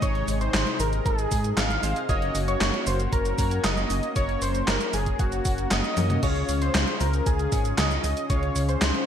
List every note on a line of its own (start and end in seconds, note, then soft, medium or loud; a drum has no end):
0.00 0.23 G#1 loud
0.00 2.05 C3 medium
0.00 2.05 G#3 medium
0.00 1.80 G#3 medium
0.00 2.05 D#4 medium
0.00 1.80 D#4 medium
0.00 1.80 G#4 medium
0.00 0.38 C#5 loud
0.00 1.80 D#5 medium
0.00 0.38 C#6 loud
0.00 kick loud
0.00 closed hi-hat medium
0.00 shaker soft
0.15 closed hi-hat soft
0.28 0.49 G#1 medium
0.28 open hi-hat medium
0.28 shaker medium
0.41 0.77 C5 loud
0.41 0.77 C6 loud
0.41 closed hi-hat medium
0.41 shaker soft
0.54 0.64 G#1 loud
0.54 snare loud
0.54 clap loud
0.54 closed hi-hat medium
0.54 shaker soft
0.67 closed hi-hat soft
0.80 1.01 G#1 loud
0.80 1.07 A#4 loud
0.80 1.07 A#5 loud
0.80 open hi-hat medium
0.80 shaker medium
0.93 closed hi-hat medium
0.93 shaker soft
1.06 1.26 G#1 medium
1.06 1.59 G#4 loud
1.06 1.59 G#5 loud
1.06 kick loud
1.06 closed hi-hat medium
1.06 shaker soft
1.19 closed hi-hat soft
1.19 shaker soft
1.31 1.52 G#2 loud
1.31 kick loud
1.31 open hi-hat medium
1.31 shaker medium
1.44 closed hi-hat medium
1.44 shaker soft
1.57 1.78 G#1 loud
1.57 2.11 F5 loud
1.57 2.11 F6 loud
1.57 snare loud
1.57 clap loud
1.57 closed hi-hat medium
1.57 shaker soft
1.70 closed hi-hat soft
1.70 shaker soft
1.83 1.94 G#1 loud
1.83 2.06 G#3 medium
1.83 2.06 C4 medium
1.83 2.06 D#4 medium
1.83 2.06 G#4 medium
1.83 2.06 C5 loud
1.83 open hi-hat medium
1.83 shaker medium
1.96 closed hi-hat soft
1.96 shaker soft
2.09 2.30 F#1 loud
2.09 6.19 A#3 medium
2.09 3.35 A#3 medium
2.09 9.06 C#4 medium
2.09 3.35 C#4 medium
2.09 4.14 F#4 medium
2.09 3.35 F#4 medium
2.09 3.35 A#4 medium
2.09 3.35 C#5 loud
2.09 2.49 D#5 loud
2.09 2.49 D#6 loud
2.09 kick loud
2.09 closed hi-hat medium
2.09 shaker soft
2.22 closed hi-hat soft
2.35 2.56 F#1 medium
2.35 open hi-hat medium
2.35 shaker medium
2.48 2.84 C#5 loud
2.48 2.84 C#6 loud
2.48 closed hi-hat medium
2.48 shaker soft
2.61 2.71 F#1 loud
2.61 snare loud
2.61 clap loud
2.61 closed hi-hat medium
2.61 shaker soft
2.74 closed hi-hat soft
2.87 3.07 F#1 loud
2.87 2.99 C5 loud
2.87 2.98 C6 loud
2.87 open hi-hat medium
2.87 shaker medium
3.00 closed hi-hat medium
3.00 shaker soft
3.13 3.33 F#1 medium
3.13 3.61 A#4 loud
3.13 3.61 A#5 loud
3.13 kick loud
3.13 closed hi-hat medium
3.13 shaker soft
3.25 closed hi-hat soft
3.25 shaker soft
3.38 3.59 F#2 loud
3.38 4.13 A#3 medium
3.38 4.13 C#4 medium
3.38 4.13 F#4 medium
3.38 4.13 A#4 medium
3.38 4.13 C#5 medium
3.38 kick loud
3.38 open hi-hat medium
3.38 shaker medium
3.51 closed hi-hat medium
3.51 shaker soft
3.64 3.85 F#1 loud
3.64 4.18 D#5 loud
3.64 4.18 D#6 loud
3.64 snare loud
3.64 clap loud
3.64 closed hi-hat medium
3.64 shaker soft
3.77 closed hi-hat soft
3.77 shaker soft
3.90 4.01 F#1 loud
3.90 open hi-hat medium
3.90 shaker medium
4.03 closed hi-hat soft
4.03 shaker soft
4.16 4.37 F#1 medium
4.16 5.94 A#3 medium
4.16 5.94 C#4 medium
4.16 5.94 F#4 medium
4.16 5.94 A#4 medium
4.16 5.94 C#5 medium
4.16 4.43 C#5 loud
4.16 4.43 C#6 loud
4.16 kick loud
4.16 closed hi-hat medium
4.16 shaker soft
4.29 closed hi-hat soft
4.42 4.63 F#1 medium
4.42 4.69 C5 loud
4.42 4.69 C6 loud
4.42 open hi-hat medium
4.42 shaker medium
4.55 closed hi-hat medium
4.55 shaker soft
4.68 4.78 F#1 loud
4.68 4.95 A#4 loud
4.68 4.94 A#5 loud
4.68 snare loud
4.68 clap loud
4.68 closed hi-hat medium
4.68 shaker soft
4.81 closed hi-hat soft
4.81 shaker soft
4.93 5.14 F#1 loud
4.93 5.20 G#4 medium
4.93 5.20 G#5 medium
4.93 open hi-hat medium
4.93 shaker medium
5.06 kick medium
5.06 closed hi-hat medium
5.06 shaker soft
5.19 5.40 F#1 loud
5.19 5.68 F#4 loud
5.19 5.68 F#5 loud
5.19 kick loud
5.19 closed hi-hat medium
5.19 shaker soft
5.32 closed hi-hat soft
5.32 shaker soft
5.45 5.66 F#1 medium
5.45 kick loud
5.45 open hi-hat medium
5.45 shaker medium
5.58 closed hi-hat medium
5.58 shaker soft
5.71 5.82 F#1 loud
5.71 6.25 D#5 loud
5.71 6.25 D#6 loud
5.71 snare loud
5.71 clap loud
5.71 closed hi-hat medium
5.71 shaker soft
5.84 closed hi-hat soft
5.84 shaker soft
5.97 6.18 F#2 loud
5.97 6.20 A#3 medium
5.97 6.20 C#4 medium
5.97 6.20 F#4 medium
5.97 6.20 A#4 medium
5.97 6.20 C#5 loud
5.97 open hi-hat medium
5.97 high tom medium
5.97 shaker medium
6.10 closed hi-hat medium
6.10 mid tom medium
6.10 shaker soft
6.23 6.44 C#2 loud
6.23 9.06 C#3 medium
6.23 7.49 G#3 loud
6.23 7.49 C#4 medium
6.23 7.49 F4 medium
6.23 7.49 G#4 medium
6.23 9.06 G#4 medium
6.23 6.59 C#5 loud
6.23 7.49 F5 loud
6.23 6.59 C#6 loud
6.23 kick loud
6.23 closed hi-hat medium
6.23 crash medium
6.23 shaker soft
6.36 closed hi-hat soft
6.49 6.70 C#2 medium
6.49 open hi-hat medium
6.49 shaker medium
6.62 7.02 C5 loud
6.62 7.02 C6 loud
6.62 closed hi-hat medium
6.62 shaker soft
6.75 6.85 C#2 loud
6.75 snare loud
6.75 clap loud
6.75 closed hi-hat medium
6.75 shaker soft
6.88 closed hi-hat soft
7.01 7.21 C#2 loud
7.01 7.27 A#4 medium
7.01 7.27 A#5 loud
7.01 open hi-hat medium
7.01 shaker medium
7.13 closed hi-hat medium
7.13 shaker soft
7.26 7.47 C#2 medium
7.26 7.80 G#4 loud
7.26 7.80 G#5 loud
7.26 kick loud
7.26 closed hi-hat medium
7.26 shaker soft
7.39 closed hi-hat soft
7.39 shaker soft
7.52 7.73 G#1 loud
7.52 8.27 G#3 medium
7.52 8.27 C#4 medium
7.52 8.27 F4 medium
7.52 8.27 G#4 medium
7.52 8.27 C#5 medium
7.52 kick loud
7.52 open hi-hat medium
7.52 shaker medium
7.65 closed hi-hat medium
7.65 shaker soft
7.78 7.99 C#2 loud
7.78 8.26 D#5 loud
7.78 8.26 D#6 loud
7.78 snare loud
7.78 clap loud
7.78 closed hi-hat medium
7.78 shaker soft
7.91 closed hi-hat soft
7.91 shaker soft
8.04 8.14 C#2 loud
8.04 open hi-hat medium
8.04 shaker medium
8.17 closed hi-hat medium
8.17 shaker soft
8.30 8.51 C#2 loud
8.30 9.06 G#3 medium
8.30 9.06 C#4 medium
8.30 9.06 F4 medium
8.30 9.06 G#4 medium
8.30 8.70 C#5 loud
8.30 9.06 F5 medium
8.30 8.70 C#6 loud
8.30 kick loud
8.30 closed hi-hat medium
8.30 shaker soft
8.43 closed hi-hat soft
8.56 8.77 C#2 medium
8.56 open hi-hat medium
8.56 shaker medium
8.69 9.06 C5 loud
8.69 9.06 C6 loud
8.69 closed hi-hat medium
8.69 shaker soft
8.82 8.92 C#2 loud
8.82 snare loud
8.82 clap loud
8.82 closed hi-hat medium
8.82 shaker soft
8.94 closed hi-hat soft